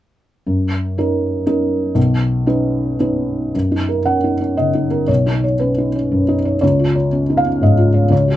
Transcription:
0.46 0.97 F#2 soft
0.98 1.43 C#4 soft
0.98 1.44 D#4 soft
0.98 1.43 A#4 soft
1.46 1.92 C#4 soft
1.46 1.92 D#4 soft
1.46 1.92 A#4 soft
1.95 2.44 B1 soft
2.47 2.95 C#4 soft
2.47 2.95 D#4 soft
2.47 2.96 B4 soft
2.99 3.50 C#4 soft
2.99 3.50 D#4 soft
2.99 3.50 B4 soft
3.55 5.05 F#2 soft
3.72 3.99 D#4 soft
3.89 4.16 A#4 soft
4.06 4.33 C#4 soft
4.06 4.54 F#5 soft
4.24 4.41 D#4 soft
4.41 4.68 C#4 soft
4.57 4.85 C#3 soft
4.57 5.05 D#5 soft
4.75 5.02 D#4 soft
4.91 5.08 A#4 soft
5.08 6.58 B1 soft
5.08 5.42 C#5 soft
5.26 5.54 D#4 soft
5.44 5.71 C#5 soft
5.59 5.88 C#4 soft
5.59 6.33 B4 soft
5.78 5.95 D#4 soft
5.95 6.22 C#4 soft
6.11 6.39 F#2 soft
6.28 6.55 D#4 soft
6.45 6.60 C#5 soft
6.61 8.08 C#2 soft
6.61 6.94 C#5 soft
6.79 7.06 F4 soft
6.95 7.22 C#5 soft
7.12 7.39 C#4 soft
7.30 7.46 D#4 soft
7.37 7.60 F5 soft
7.46 7.72 C#4 soft
7.61 7.88 G#2 soft
7.61 8.09 D#5 soft
7.78 8.05 F4 soft
7.94 8.10 C#5 soft
8.10 8.37 C#2 soft
8.10 8.37 C#5 soft
8.28 8.37 F#4 soft

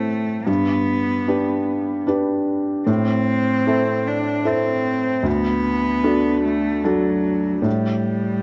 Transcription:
0.00 0.50 A2 soft
0.00 0.47 A3 medium
0.00 0.50 C4 soft
0.00 0.50 E4 soft
0.00 0.50 A4 soft
0.46 1.25 G2 soft
0.46 2.07 B3 medium
1.28 2.04 D4 soft
1.28 2.04 G4 soft
1.28 2.04 B4 soft
2.07 2.83 D4 soft
2.07 2.84 G4 soft
2.07 2.84 B4 soft
2.87 3.65 A2 medium
2.87 4.09 C4 medium
3.67 4.42 C4 soft
3.67 4.43 E4 soft
3.67 4.42 A4 soft
4.07 4.48 D4 medium
4.45 5.21 C4 soft
4.45 5.28 C4 medium
4.45 5.21 E4 soft
4.45 5.21 A4 soft
5.23 6.01 D2 soft
5.23 6.44 B3 medium
6.04 6.80 D4 soft
6.04 6.81 F#4 soft
6.04 6.81 A4 soft
6.44 6.87 A3 medium
6.84 7.64 F#3 medium
6.84 7.61 D4 soft
6.84 7.61 F#4 soft
6.84 7.61 A4 soft
7.62 8.41 A2 medium
7.62 8.43 G3 medium

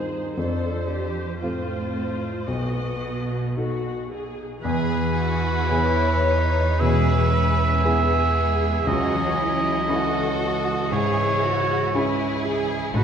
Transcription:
0.00 0.39 D#2 soft
0.00 0.37 G2 soft
0.00 0.42 D#3 soft
0.00 0.33 C4 soft
0.00 0.11 D#4 soft
0.00 0.34 D#4 soft
0.00 0.38 D#4 medium
0.00 0.37 G#4 soft
0.00 0.34 A#4 soft
0.00 0.41 A#4 soft
0.00 0.35 C5 soft
0.00 1.15 C5 soft
0.00 0.41 D#5 soft
0.12 0.42 D#4 soft
0.36 1.38 F2 soft
0.36 1.42 F2 soft
0.36 2.53 F2 soft
0.36 1.24 D4 medium
0.36 0.88 A4 soft
0.36 1.39 C5 soft
0.64 2.21 F4 soft
0.89 1.41 G4 soft
0.89 1.94 A4 soft
1.16 1.67 C5 soft
1.41 2.48 A2 soft
1.41 2.17 C4 soft
1.41 2.44 C4 soft
1.41 2.45 F4 soft
1.41 2.44 F4 soft
1.41 2.45 A4 soft
1.41 2.46 C5 soft
1.41 2.52 F5 soft
1.68 2.52 C5 soft
1.95 3.03 A4 soft
2.22 2.53 F4 soft
2.46 3.53 B1 soft
2.46 4.43 B2 soft
2.46 4.68 B2 soft
2.46 3.52 B3 soft
2.46 3.45 F#4 soft
2.46 3.45 D#5 soft
2.76 4.36 F#4 soft
3.04 4.09 A4 soft
3.30 3.82 D#5 soft
3.56 4.60 D#4 soft
3.56 4.07 F#4 soft
3.56 4.60 F#4 soft
3.56 4.61 A4 soft
3.56 4.68 F#5 soft
3.83 4.68 D#5 soft
4.10 4.64 G#4 soft
4.10 4.68 A4 soft
4.37 4.68 F#4 soft
4.63 8.82 E2 medium
4.63 5.67 E2 soft
4.63 6.76 E3 medium
4.63 6.79 E3 medium
4.63 5.13 G#4 soft
4.63 5.67 G#4 medium
4.63 6.82 B4 medium
4.89 7.05 B3 soft
5.17 5.70 F#4 medium
5.43 9.33 G#5 soft
5.70 6.77 E3 soft
5.70 6.76 B3 soft
5.70 6.25 E4 medium
5.70 6.77 G#4 soft
5.70 7.82 B4 soft
5.70 6.80 C#5 medium
6.26 6.79 D#4 medium
6.79 7.81 B2 soft
6.79 8.91 E3 soft
6.79 7.31 G#3 medium
6.79 7.84 C#4 soft
6.79 7.28 G#4 medium
6.79 7.83 B4 medium
6.79 8.89 E5 medium
7.07 8.91 B3 soft
7.32 8.84 G#3 medium
7.32 7.82 B4 medium
7.83 8.86 B3 medium
7.83 8.83 B3 soft
7.83 8.83 E4 soft
7.83 8.85 G#4 soft
7.83 8.86 G#4 medium
7.83 8.83 G#4 soft
7.83 8.91 B4 soft
8.61 12.51 C#4 soft
8.86 12.90 C#2 medium
8.86 9.86 C#2 soft
8.86 10.90 C#3 medium
8.86 9.87 F#3 medium
8.86 9.89 C#4 medium
8.86 9.38 F#4 medium
8.86 9.86 G#4 medium
8.86 10.91 D#5 medium
9.12 12.98 E3 soft
9.38 9.89 E4 medium
9.88 10.38 E3 medium
9.88 10.87 C#4 soft
9.88 10.87 E4 soft
9.88 10.91 F#4 medium
9.88 10.90 F#4 medium
9.88 10.91 A4 medium
9.88 11.92 C#5 soft
10.40 12.94 E3 medium
10.91 11.91 G#2 soft
10.91 12.98 C#3 soft
10.91 11.93 E4 soft
10.91 11.42 G#4 medium
10.91 11.43 G#4 medium
10.91 12.41 C#5 medium
11.18 12.98 G#3 soft
11.43 11.94 F#4 medium
11.68 12.43 G#4 soft
11.94 12.91 C#4 soft
11.94 12.44 E4 soft
11.94 12.92 E4 medium
11.94 12.91 E4 soft
11.94 12.92 G#4 medium
11.94 12.91 G#4 soft
11.94 13.04 C#5 soft
12.44 12.98 G#4 soft
12.44 12.94 G#4 medium
12.94 13.04 A1 medium
12.94 13.04 A2 medium
12.94 13.04 F#3 medium
12.94 13.04 D#4 medium
12.94 13.04 F#4 medium
12.94 13.04 A4 medium
12.94 13.04 B4 medium

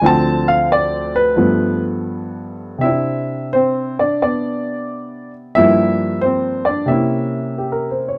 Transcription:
0.02 1.36 D2 medium
0.02 1.36 D3 medium
0.02 1.35 F3 medium
0.02 1.37 C4 medium
0.06 0.47 A5 loud
0.48 0.69 F5 medium
0.72 1.14 D5 medium
1.16 1.82 B4 medium
1.36 2.82 G2 medium
1.36 2.82 F3 medium
1.36 2.83 A3 soft
1.36 2.83 B3 medium
2.78 5.54 C3 soft
2.78 3.53 C4 soft
2.78 3.48 E5 medium
2.83 4.00 D4 soft
2.83 2.88 E4 medium
2.89 5.56 E4 soft
3.53 3.96 C4 medium
3.53 3.95 C5 medium
3.99 4.21 D4 medium
3.99 4.20 D5 medium
4.22 5.56 B3 soft
4.22 5.31 D4 medium
4.22 5.30 D5 medium
5.55 6.90 G2 medium
5.55 6.91 F3 medium
5.55 6.90 G3 soft
5.55 6.86 A#3 soft
5.55 6.19 E4 medium
5.55 6.18 E5 loud
6.21 6.65 C4 medium
6.21 6.68 C5 medium
6.65 6.89 D4 medium
6.65 6.87 D5 medium
6.86 8.18 C3 medium
6.86 8.18 A#3 soft
6.86 8.18 C#4 soft
6.86 7.96 E5 medium
6.91 8.18 E4 medium
7.58 7.89 G4 soft
7.72 8.01 A#4 soft
7.91 8.11 C5 soft
8.08 8.18 C#5 soft

